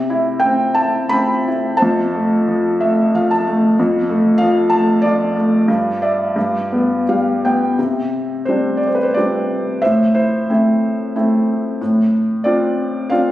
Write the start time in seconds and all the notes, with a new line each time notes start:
Already playing: C3
0.10 E4
0.40 G5
0.45 C4
0.75 A5
0.80 E4
1.09 C4 B5
1.48 E4
1.77 C5 A5
1.82 F2
2.15 A3
2.48 F3
2.80 A3 E5
3.14 F3 F5
3.31 A5
3.47 A3
3.79 F2
4.09 A3
4.38 F3 F5
4.70 A5
4.75 A3
5.02 F3 F4 D5
5.37 A3
5.68 G2
6.02 D5 E5
6.36 G2
6.72 B3
7.09 G3 F5
7.45 B3 G5
7.79 C3
8.45 G3 C4 D4 C5
8.77 D5
8.87 C5
8.95 B4
9.03 C5
9.14 G3 C4 D4 D5
9.82 A2 C5 E5
10.14 E4 C5
10.49 A3 C4 E4
11.16 A3 C4 E4
11.81 A2
12.44 C4 D4 F4 D5
13.10 C4 D4 F4 F5